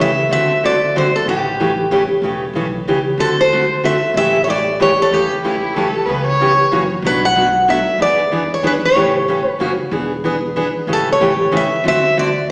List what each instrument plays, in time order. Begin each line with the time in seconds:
Already playing: upright bass C#2
0.00 steel-string acoustic guitar G4 E5
0.29 upright bass D2, steel-string acoustic guitar D3 A3 C4 F#4 A4 E5
0.63 steel-string acoustic guitar D3 A3 C4 F#4 A4 D5
0.96 steel-string acoustic guitar D3 A3 C4 F#4 A4 C5
1.16 steel-string acoustic guitar A4
1.26 upright bass A1, steel-string acoustic guitar C#3 E3 A3 C#4 G4
1.60 steel-string acoustic guitar C#3 E3 A3 C#4 G4
1.91 steel-string acoustic guitar C#3 E3 A3 C#4 G4
2.22 upright bass E1, steel-string acoustic guitar C#3 E3 A3 C#4 G4
2.53 upright bass B1, steel-string acoustic guitar C#3 E3 A3 C#4 G4
2.85 upright bass C#2, steel-string acoustic guitar C#3 E3 A3 C#4 G4
3.18 upright bass D2, steel-string acoustic guitar D3 A3 C4 F#4 A4
3.41 steel-string acoustic guitar C5
3.52 steel-string acoustic guitar D3 A3 C4 F#4 A4
3.83 steel-string acoustic guitar D3 A3 C4 F#4 A4 E5
4.14 upright bass A1, steel-string acoustic guitar C#3 E3 A3 C#4 G4 E5
4.44 steel-string acoustic guitar C#3 E3 C#5
4.48 steel-string acoustic guitar A3 C#4 G4 D5
4.80 steel-string acoustic guitar C#3 E3 A3 C#4 G4 C#5
5.02 steel-string acoustic guitar A4
5.11 upright bass E2, steel-string acoustic guitar C#3 E3 A3 C#4 G4
5.43 steel-string acoustic guitar C#3 E3 A3 C#4 G4, violin E4
5.75 steel-string acoustic guitar C#3 E3 A3 C#4 G4, violin A4
6.05 upright bass C#2, steel-string acoustic guitar C#3 E3 B3 C#4, violin B4
6.09 steel-string acoustic guitar G4
6.27 violin C#5
6.40 steel-string acoustic guitar C#3 E3 B3 C#4 G4
6.71 upright bass F#2, steel-string acoustic guitar C#3 E3 A#3 C#4 F#4
7.02 upright bass B1, steel-string acoustic guitar B2 F#3 A3 D4 F#4
7.07 steel-string acoustic guitar B4
7.25 steel-string acoustic guitar F#5
7.36 steel-string acoustic guitar B2 F#3 A3 D4 F#4
7.68 steel-string acoustic guitar B2 F#3 A3 D4 F#4 E5
7.98 upright bass E2, steel-string acoustic guitar E3 B3 D4 G#4
8.02 steel-string acoustic guitar D5
8.32 steel-string acoustic guitar E3 B3 D4 G#4
8.54 steel-string acoustic guitar C#5
8.63 steel-string acoustic guitar E3 B3 D4 G#4
8.67 steel-string acoustic guitar B4
8.85 steel-string acoustic guitar C#5
8.95 upright bass A1, steel-string acoustic guitar C#3 E3 A3 C#4 G4
9.28 steel-string acoustic guitar C#3 E3 A3 C#4 G4
9.49 steel-string acoustic guitar B4
9.59 upright bass F#1, steel-string acoustic guitar C#3 E3 A#3 C#4 F#4
9.91 upright bass E1, steel-string acoustic guitar E3 B3 D4 G#4
10.24 steel-string acoustic guitar E3 B3 D4 G#4
10.56 steel-string acoustic guitar E3 B3 D4 G#4
10.87 upright bass A1, steel-string acoustic guitar C#3 E3 A3 C#4 G4
10.93 steel-string acoustic guitar A4
11.12 steel-string acoustic guitar C#5
11.20 steel-string acoustic guitar C#3 E3 A3 C#4 G4
11.52 steel-string acoustic guitar C#3 E3 A3 C#4 G4
11.57 steel-string acoustic guitar E5
11.84 upright bass D2, steel-string acoustic guitar D3 A3 C4 F#4 A4
11.88 steel-string acoustic guitar E5
12.17 steel-string acoustic guitar D3 A3 C4 F#4 A4 D5